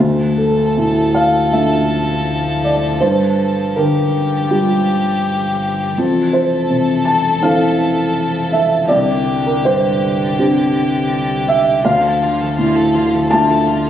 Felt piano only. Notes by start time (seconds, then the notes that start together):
0.00 D2
0.38 A4
0.77 A2
1.14 F5
1.52 A3 D4 F4 E5
2.64 D5
3.01 G2 C5
3.76 D3 A#4
4.50 G3 F4 G4
5.98 F2
6.33 C5
6.69 C3
7.05 A5
7.42 E3 C4 A4 F5
8.52 E5
8.88 C2 D5
9.46 A#4
9.64 G2 C5
10.38 C4 D4 G4
11.48 E5
11.85 D2 F5
12.58 A2
13.31 A3 D4 F4 A5